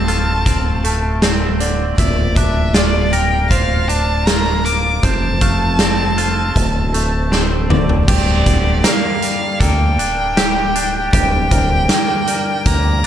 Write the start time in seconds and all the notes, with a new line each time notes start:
Already playing: D1 D2 D3 A3 C4 D5 F5 A5
0.08 F4 A4, closed hi-hat
0.46 C4, kick, closed hi-hat
0.84 A3 A4, closed hi-hat
1.22 C4, snare, closed hi-hat
1.60 D3 D5, closed hi-hat
1.98 D1 A#2 D5 E5, kick, closed hi-hat
2.35 D4 E5, kick, closed hi-hat
2.74 F4 D5, snare, closed hi-hat
3.12 A#4 G5, closed hi-hat
3.51 F4 C5 F5, kick, closed hi-hat
3.88 D4 A5, closed hi-hat
4.26 F4 A#4 A#5, snare, closed hi-hat
4.64 A#3 D6, closed hi-hat
5.03 F1 F2 C5 A5, kick, closed hi-hat
5.41 A3 F5, kick, closed hi-hat
5.79 C4, snare, closed hi-hat
6.18 F4 A4, closed hi-hat
6.56 D1 D2, kick, closed hi-hat
6.93 A3 A4, closed hi-hat
7.32 C4, snare
7.70 D3 D5, mid tom
7.89 floor tom
8.08 D1 G2 G4 D5, kick, crash
8.46 D1 D3, kick, closed hi-hat
8.84 A#3 A#4 F5, snare, closed hi-hat
9.22 G3, closed hi-hat
9.60 D2 A#3 A4 G5, kick, closed hi-hat
9.98 D1 D4, closed hi-hat
10.37 G4, snare, closed hi-hat
10.75 D4, closed hi-hat
11.13 D1 G2 G4 G5, kick, closed hi-hat
11.51 D1 D3 A#4, kick, closed hi-hat
11.89 A#3, snare, closed hi-hat
12.27 G3 A#4, closed hi-hat
12.66 D2 A#3 A#5, kick, closed hi-hat
13.04 D1